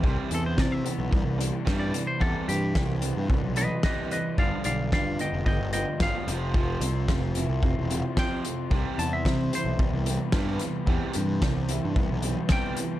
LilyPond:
<<
  \new Staff \with { instrumentName = "Clean electric guitar" } { \time 4/4 \key c \major \tempo 4 = 111 r8 a'16 c''16 d''16 e''2 d''8 c''16 | a'8 g'4 r4 <b' ees''>8 <b' ees''>8 <b' ees''>8 | <d'' f''>8 <d'' f''>8 <d'' f''>8 <ees'' g''>8 <ees'' g''>8 <ees'' g''>8 f''4~ | f''2 r4 g''4~ |
g''8 a''16 e''8. c''8 r2 | r2. g''4 | }
  \new Staff \with { instrumentName = "Overdriven electric guitar" } { \clef bass \time 4/4 \key c \major c8 e8 e8 b8 g8 e8 g8 e8 | c8 e8 e8 b8 g8 e8 g8 e8 | g,8 d8 f8 b8 g8 f8 g8 f8 | f8 c'8 f8 e'8 c'8 f8 c'8 f8 |
c8 g8 g8 e'8 b8 g8 b8 g8 | c8 g8 g8 e'8 b8 g8 b8 g8 | }
  \new Staff \with { instrumentName = "Overdriven electric guitar" } { \clef bass \time 4/4 \key c \major <c e g>8 <c e>8 <c e>8 <c e>8 <c e>8 <c e>8 <c e g>8 <c e>8 | <c e g>8 <c e>8 <c e>8 <c e>8 <c e>8 <c e>8 <c e g>8 <c e>8 | <g, d f>8 <g, d>8 <g, d>8 <g, d>8 <g, d>8 <g, d>8 <g, d f>8 <f, c f>8 | <f, c f>8 <f, c>8 <f, c>8 <f, c>8 <f, c>8 <f, c>8 <f, c f>8 <f, c>8 |
<c e g>8 <c e>8 <c e>8 <c e>8 <c e>8 <c e>8 <c e g>8 <c e>8 | <c e g>8 <c e>8 <c e>8 <c e>8 <c e>8 <c e>8 <c e g>8 <c e>8 | }
  \new Staff \with { instrumentName = "Picked electric bass" } { \clef bass \time 4/4 \key c \major c,16 r16 e,8 c8 r16 b,,16 c,16 c,8 r16 g,8 r8 | e,16 r16 g,8 c,8. g,16 c,16 b,,8 r4 r16 | g,,16 r16 b,,8 g,8 r16 f,,16 g,,16 g,,8 r16 g,,16 r16 f,,8~ | f,,8 c,8 f,,8. c,16 f,,16 e,,8 r4 r16 |
c,16 r16 e,8 c8 r16 b,,16 c,16 c,8 r16 g,8 r8 | e,16 r16 g,8 c,8. g,16 c,16 b,,8 r4 r16 | }
  \new DrumStaff \with { instrumentName = "Drums" } \drummode { \time 4/4 bd8 hh8 <bd sn>8 hh8 bd8 hh8 <bd sn>8 hh8 | bd8 hh8 <bd sn>8 hh8 bd8 hh8 <bd sn>8 hh8 | bd8 hh8 <bd sn>8 hh8 bd8 hh8 <bd sn>8 hh8 | bd8 hh8 <bd sn>8 hh8 bd8 hh8 <bd sn>8 hh8 |
bd8 hh8 <bd sn>8 hh8 bd8 hh8 <bd sn>8 <hh sn>8 | bd8 hh8 <bd sn>8 hh8 bd8 hh8 <bd sn>8 hh8 | }
>>